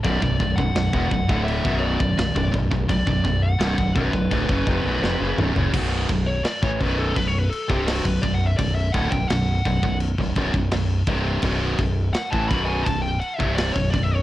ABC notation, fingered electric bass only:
X:1
M:4/4
L:1/16
Q:1/4=84
K:Bm
V:1 name="Fingered electric bass" clef=bass
B,,,, B,,,, B,,,, B,,,, B,,,, E,,, B,,,, D,,,2 B,,,,2 B,,,, B,,,, B,,,, B,,,, B,,,, | B,,,, B,,,, B,,,,2 =C,,, B,,,, B,,,, B,,,, D,,, F,,, ^E,,, B,,,, E,,, F,,, B,,,, F,,, | B,,,,2 B,,,,2 z A,,, B,,,,2 B,,,,2 z =C,,,2 B,,,, B,,,,2 | B,,,,2 D,,, B,,,, B,,,,2 B,,,, B,,,,2 B,,,, B,,,, B,,,, B,,,,2 =C,,,2 |
B,,,,2 B,,,,2 z A,,, B,,,,2 B,,,,2 z =C,,,2 B,,,, B,,,,2 |]